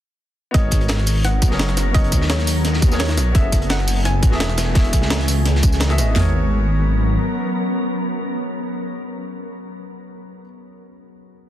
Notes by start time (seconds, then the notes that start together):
0.51 G#1 F#3 B3 C#4 F#4 G#4 A#4 D#5, kick, closed hi-hat
0.56 A#4 C#5
0.71 kick, closed hi-hat, tambourine
0.81 closed hi-hat
0.88 snare, closed hi-hat
0.99 snare
1.06 closed hi-hat, open hi-hat, tambourine
1.25 F#5, snare, closed hi-hat
1.42 B1, kick, closed hi-hat, tambourine
1.48 F#1 B3 F#4 G#4, snare
1.53 A#4 C#5
1.59 snare, closed hi-hat
1.69 snare
1.77 snare, closed hi-hat, tambourine
1.91 B3 F#4 G#4 D#5, kick, closed hi-hat
1.96 A#4 C#5
2.04 closed hi-hat
2.12 D#2, kick, closed hi-hat, tambourine
2.22 snare
2.30 C#5, snare, closed hi-hat
2.39 snare
2.47 closed hi-hat, open hi-hat, tambourine
2.65 snare, closed hi-hat
2.73 snare
2.82 kick, closed hi-hat, tambourine
2.88 B3 F#4 G#4, snare, tambourine
2.93 A#4 C#5
2.99 C#5, snare, closed hi-hat
3.04 snare, closed hi-hat
3.09 snare, closed hi-hat
3.17 A#1, snare, closed hi-hat, tambourine
3.32 F#1 E3 A3 B3 F#4 G#4 E5 G#5, kick, closed hi-hat
3.36 A4 E5
3.52 kick, closed hi-hat, tambourine
3.62 closed hi-hat
3.70 F#5, snare, closed hi-hat
3.79 snare
3.87 closed hi-hat, open hi-hat, tambourine
4.05 G#5, snare, closed hi-hat
4.23 A1, kick, closed hi-hat, tambourine
4.29 E1 B3 F#4 G#4, snare
4.33 A4 E5
4.40 snare, closed hi-hat
4.50 snare
4.57 snare, closed hi-hat, tambourine
4.72 B3 F#4 G#4, kick, snare, closed hi-hat
4.77 A4 E5
4.84 closed hi-hat
4.93 C#2, kick, closed hi-hat, tambourine
5.02 snare
5.10 snare, closed hi-hat
5.20 snare
5.28 closed hi-hat, open hi-hat, tambourine
5.46 snare, closed hi-hat
5.55 snare
5.63 kick, closed hi-hat, tambourine
5.72 snare, tambourine
5.80 snare, closed hi-hat
5.88 B3 F#4 G#4 A4 E5, snare, closed hi-hat
5.97 G#1 B3 F#4 G#4 A4 D#5, snare, closed hi-hat, tambourine
6.11 B3 F#4
6.16 G#1 F#3 B3 C#4 G#4 A#4, snare, floor tom
6.21 C#5